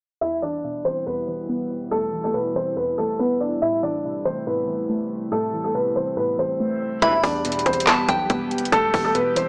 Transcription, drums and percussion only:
7.02 kick, closed hi-hat
7.24 kick, open hi-hat
7.45 closed hi-hat
7.52 closed hi-hat
7.59 closed hi-hat
7.66 kick, closed hi-hat
7.73 closed hi-hat
7.80 closed hi-hat
7.87 snare, clap, closed hi-hat
8.09 kick, closed hi-hat
8.30 kick, closed hi-hat
8.51 closed hi-hat
8.58 closed hi-hat
8.65 closed hi-hat
8.72 kick, closed hi-hat
8.94 kick, open hi-hat
9.15 closed hi-hat
9.36 closed hi-hat

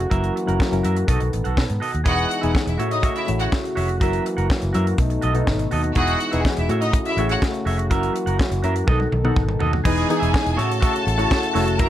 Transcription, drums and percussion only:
0.00 closed hi-hat
0.11 kick, closed hi-hat
0.24 closed hi-hat
0.37 closed hi-hat
0.48 closed hi-hat
0.60 kick, snare
0.73 closed hi-hat
0.84 closed hi-hat
0.96 closed hi-hat
1.08 kick, closed hi-hat
1.20 closed hi-hat
1.33 closed hi-hat
1.45 closed hi-hat
1.57 kick, snare
1.70 closed hi-hat
1.82 open hi-hat
1.95 closed hi-hat
2.06 kick, closed hi-hat
2.19 closed hi-hat
2.31 closed hi-hat
2.43 closed hi-hat
2.55 kick, snare
2.67 closed hi-hat
2.80 closed hi-hat
2.91 closed hi-hat
3.03 kick, closed hi-hat
3.16 closed hi-hat
3.28 closed hi-hat
3.40 closed hi-hat
3.52 kick, snare
3.65 closed hi-hat
3.77 open hi-hat
3.89 closed hi-hat
4.01 kick, closed hi-hat
4.13 closed hi-hat
4.26 closed hi-hat
4.38 closed hi-hat
4.50 kick, snare
4.62 closed hi-hat
4.74 closed hi-hat
4.87 closed hi-hat
4.98 kick, closed hi-hat
5.10 closed hi-hat
5.22 closed hi-hat
5.35 closed hi-hat
5.47 kick, snare
5.59 closed hi-hat
5.71 open hi-hat
5.84 closed hi-hat
5.95 kick, closed hi-hat
6.08 closed hi-hat
6.20 closed hi-hat
6.33 closed hi-hat
6.45 kick, snare
6.57 closed hi-hat
6.69 closed hi-hat
6.82 closed hi-hat
6.93 kick, closed hi-hat
7.06 closed hi-hat
7.18 closed hi-hat
7.29 closed hi-hat
7.42 kick, snare
7.54 closed hi-hat
7.67 open hi-hat
7.79 closed hi-hat
7.91 kick, closed hi-hat
8.03 closed hi-hat
8.16 closed hi-hat
8.27 closed hi-hat
8.39 kick, snare
8.52 closed hi-hat
8.64 closed hi-hat
8.76 closed hi-hat
8.88 kick, high tom
9.00 high tom
9.12 mid tom
9.25 mid tom
9.36 kick
9.49 mid tom
9.60 floor tom
9.73 floor tom
9.85 kick, crash
9.97 closed hi-hat
10.10 closed hi-hat
10.23 closed hi-hat
10.34 kick, snare
10.46 closed hi-hat
10.59 closed hi-hat
10.72 closed hi-hat
10.82 kick, closed hi-hat
10.96 closed hi-hat
11.08 closed hi-hat
11.19 closed hi-hat
11.31 kick, snare
11.43 closed hi-hat
11.55 snare, open hi-hat
11.68 closed hi-hat
11.79 kick, closed hi-hat

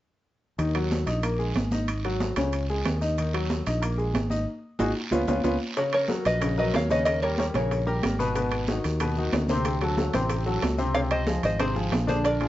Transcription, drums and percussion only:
0.59 high conga, high timbale, long guiro, maracas
0.75 high conga, high timbale, maracas
0.91 high conga, low timbale, short guiro, maracas
1.07 high conga, high timbale, short guiro, maracas
1.23 high conga, high timbale, long guiro, maracas
1.40 high conga, maracas
1.56 high conga, high timbale, low timbale, short guiro, maracas
1.71 high conga, short guiro, maracas
1.88 high conga, high timbale, long guiro, maracas
2.04 high conga, high timbale, maracas
2.20 high conga, low timbale, short guiro, maracas
2.36 high conga, high timbale, short guiro, maracas
2.53 high conga, high timbale, long guiro, maracas
2.69 high conga, maracas
2.85 high conga, high timbale, low timbale, short guiro, maracas
3.01 high conga, short guiro, maracas
3.18 high conga, high timbale, long guiro, maracas
3.34 high conga, high timbale, maracas
3.50 high conga, low timbale, short guiro, maracas
3.66 high conga, high timbale, short guiro, maracas
3.82 high conga, high timbale, long guiro, maracas
3.98 high conga, maracas
4.14 high conga, high timbale, low timbale, short guiro, maracas
4.30 high conga, short guiro, maracas
4.79 high conga, high timbale, long guiro, maracas
5.11 high conga, high timbale, long guiro, maracas
5.27 high conga, high timbale, long guiro, maracas
5.44 high conga, high timbale, long guiro, maracas
5.76 high bongo, high conga, high timbale, long guiro, maracas
5.93 high bongo, high conga, high timbale, maracas
6.08 high bongo, high conga, low timbale, short guiro, maracas
6.25 high bongo, high conga, high timbale, short guiro, maracas
6.41 high bongo, high conga, high timbale, long guiro, maracas
6.58 high conga, maracas
6.74 high bongo, low bongo, high conga, high timbale, low timbale, short guiro, maracas
6.90 high bongo, high conga, short guiro, maracas
7.06 high bongo, high timbale, long guiro, maracas
7.22 high bongo, high conga, high timbale, maracas
7.38 high bongo, high conga, low timbale, short guiro, maracas
7.54 high bongo, high conga, high timbale, short guiro, maracas
7.71 high bongo, high conga, high timbale, long guiro, maracas
7.87 high bongo, high conga, maracas
8.03 high bongo, low bongo, high conga, high timbale, low timbale, short guiro, maracas
8.19 high conga, short guiro, maracas
8.35 high bongo, high conga, high timbale, long guiro, maracas
8.52 high bongo, high conga, high timbale, maracas
8.68 high bongo, high conga, low timbale, short guiro, maracas
8.84 high bongo, high conga, high timbale, short guiro, maracas
9.00 high bongo, high conga, high timbale, long guiro, maracas
9.17 high conga, maracas
9.32 high bongo, low bongo, high conga, high timbale, low timbale, short guiro, maracas
9.48 high bongo, high conga, short guiro, maracas
9.65 high bongo, high conga, high timbale, long guiro, maracas
9.81 high bongo, high conga, high timbale, maracas
9.97 high bongo, high conga, low timbale, short guiro, maracas
10.13 high bongo, high conga, high timbale, short guiro, maracas
10.29 high bongo, high conga, high timbale, long guiro, maracas
10.46 high bongo, high conga, maracas
10.62 high bongo, low bongo, high conga, high timbale, low timbale, short guiro, maracas
10.78 high conga, short guiro, maracas
10.95 high bongo, high timbale, long guiro, maracas
11.11 high bongo, high conga, high timbale, maracas
11.27 high bongo, high conga, low timbale, short guiro, maracas
11.43 high bongo, high conga, high timbale, short guiro, maracas
11.60 high bongo, high conga, high timbale, long guiro, maracas
11.76 high conga, maracas
11.92 high bongo, low bongo, high conga, high timbale, low timbale, short guiro, maracas
12.08 high bongo, high conga, short guiro, maracas
12.25 high bongo, high timbale, long guiro, maracas
12.41 high bongo, high conga, high timbale, maracas

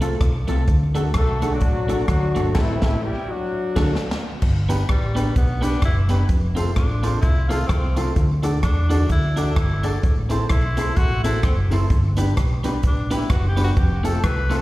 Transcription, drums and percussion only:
0.02 closed hi-hat
0.21 kick, cross-stick, closed hi-hat
0.48 closed hi-hat
0.68 kick, closed hi-hat
0.95 closed hi-hat
1.14 kick, cross-stick, closed hi-hat
1.42 closed hi-hat
1.61 kick, closed hi-hat
1.89 closed hi-hat
2.08 kick, cross-stick, closed hi-hat
2.36 closed hi-hat
2.55 kick, snare, crash
2.82 kick, snare
3.76 kick, snare, crash
3.95 snare
4.11 snare
4.42 kick, crash
4.70 closed hi-hat, tambourine
4.89 kick, cross-stick, closed hi-hat
5.16 closed hi-hat, tambourine
5.36 kick, closed hi-hat
5.63 closed hi-hat, tambourine
5.82 kick, cross-stick, closed hi-hat
6.09 closed hi-hat, tambourine
6.29 kick, closed hi-hat
6.56 closed hi-hat, tambourine
6.76 kick, cross-stick, closed hi-hat
7.03 closed hi-hat, tambourine
7.22 kick, closed hi-hat
7.50 closed hi-hat, tambourine
7.69 kick, cross-stick, closed hi-hat
7.96 closed hi-hat, tambourine
8.16 kick, closed hi-hat
8.43 closed hi-hat, tambourine
8.63 kick, cross-stick, closed hi-hat
8.90 closed hi-hat, tambourine
9.09 kick, closed hi-hat
9.37 closed hi-hat, tambourine
9.56 kick, cross-stick, closed hi-hat
9.83 closed hi-hat, tambourine
10.03 kick, closed hi-hat
10.30 closed hi-hat, tambourine
10.49 kick, cross-stick, closed hi-hat
10.77 closed hi-hat, tambourine
10.96 kick, closed hi-hat
11.24 closed hi-hat, tambourine
11.43 kick, cross-stick, closed hi-hat
11.71 open hi-hat, tambourine
11.90 kick, closed hi-hat
12.17 closed hi-hat, tambourine
12.37 kick, cross-stick, closed hi-hat
12.64 closed hi-hat, tambourine
12.83 kick, closed hi-hat
13.11 closed hi-hat, tambourine
13.30 kick, cross-stick, closed hi-hat
13.57 open hi-hat, tambourine
13.77 kick, closed hi-hat
14.05 closed hi-hat, tambourine
14.24 kick, cross-stick, closed hi-hat
14.51 closed hi-hat, tambourine

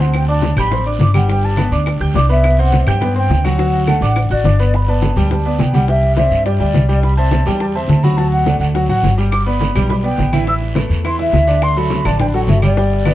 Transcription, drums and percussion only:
0.14 high bongo, high conga, long guiro, claves
0.28 high bongo, high conga
0.42 high bongo, high conga, short guiro
0.57 high bongo, high conga, low conga, short guiro, claves
0.71 high bongo, high conga, low conga, long guiro
0.86 high conga
1.00 high bongo, low bongo, high conga, short guiro
1.14 high bongo, high conga, short guiro, claves
1.28 high bongo, high conga, long guiro
1.43 high bongo, high conga
1.57 high bongo, high conga, short guiro, claves
1.72 high bongo, high conga, short guiro
1.86 high bongo, high conga, long guiro, claves
2.01 high conga
2.15 high bongo, low bongo, high conga, short guiro
2.30 high bongo, short guiro
2.44 high bongo, high conga, long guiro, claves
2.58 high bongo, high conga
2.72 high bongo, high conga, short guiro
2.87 high bongo, high conga, low conga, short guiro, claves
3.01 high bongo, high conga, low conga, long guiro
3.16 high conga
3.30 high bongo, low bongo, high conga, short guiro
3.45 high bongo, high conga, short guiro, claves
3.59 high bongo, long guiro
3.74 high bongo
3.87 high bongo, high conga, short guiro, claves
4.02 high bongo, high conga, short guiro
4.16 high bongo, high conga, long guiro, claves
4.30 high conga
4.45 high bongo, low bongo, high conga, short guiro
4.59 high bongo, high conga, short guiro
4.73 high bongo, high conga, long guiro
4.88 high bongo, high conga
5.02 high bongo, high conga, short guiro
5.16 high bongo, high conga, low conga, short guiro
5.31 high bongo, high conga, low conga, long guiro
5.46 high conga
5.59 high bongo, low bongo, high conga, short guiro
5.74 high bongo, high conga, short guiro
5.88 high bongo, long guiro
6.02 high bongo, high conga
6.17 high bongo, high conga, short guiro
6.31 high bongo, high conga, short guiro
6.45 high bongo, high conga, long guiro
6.60 high conga
6.74 high bongo, low bongo, high conga, short guiro
6.89 high bongo, short guiro
7.03 high bongo, high conga, long guiro
7.17 high bongo, high conga
7.31 high bongo, high conga, short guiro
7.46 high bongo, high conga, low conga, short guiro
7.60 high bongo, high conga, long guiro
7.75 high conga
7.89 high bongo, low bongo, high conga, short guiro
8.03 high bongo, high conga, short guiro
8.17 high bongo, long guiro
8.32 high bongo, high conga
8.46 high bongo, high conga, short guiro
8.61 high bongo, high conga, short guiro
8.75 high bongo, high conga, long guiro
8.89 high conga
9.03 high bongo, low bongo, high conga, short guiro
9.18 high bongo, short guiro
9.32 high bongo, high conga, long guiro, claves
9.47 high bongo, high conga
9.61 high bongo, high conga, short guiro
9.75 high bongo, high conga, low conga, short guiro, claves
9.90 high bongo, high conga, low conga, long guiro
10.04 high conga
10.18 high bongo, low bongo, high conga, short guiro
10.33 high bongo, high conga, short guiro, claves
10.47 high bongo, high conga, long guiro
10.61 high bongo, high conga
10.75 high bongo, high conga, short guiro, claves
10.90 high bongo, high conga, short guiro
11.05 high bongo, high conga, long guiro, claves
11.19 high conga
11.33 high bongo, low bongo, high conga, short guiro
11.47 high bongo, high conga, short guiro
11.62 high bongo, high conga, long guiro, claves
11.76 high bongo, high conga
11.90 high bongo, high conga, short guiro
12.05 high bongo, high conga, low conga, short guiro, claves
12.20 high bongo, high conga, low conga, long guiro
12.34 high conga
12.48 high bongo, low bongo, high conga, short guiro
12.62 high bongo, high conga, short guiro, claves
12.77 high bongo, long guiro
12.91 high conga
13.05 low bongo, high conga, short guiro, claves

